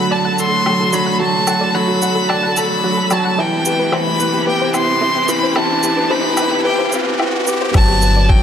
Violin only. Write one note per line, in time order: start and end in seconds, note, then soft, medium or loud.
0.00 0.13 B5 loud
0.12 0.41 A5 loud
0.40 0.96 C6 loud
0.94 1.21 B5 medium
1.21 1.77 A5 loud
1.75 2.30 B5 loud
2.29 2.59 A5 loud
2.58 3.14 B5 loud
3.13 3.42 A5 medium
3.40 3.95 G5 medium
3.93 4.48 B5 medium
4.49 4.74 G5 medium
4.75 5.31 C6 loud
5.30 5.57 B5 loud
5.56 6.13 A5 loud
6.11 6.65 B5 medium
6.65 6.91 G5 medium
7.76 8.31 A5 loud
8.29 8.43 G5 loud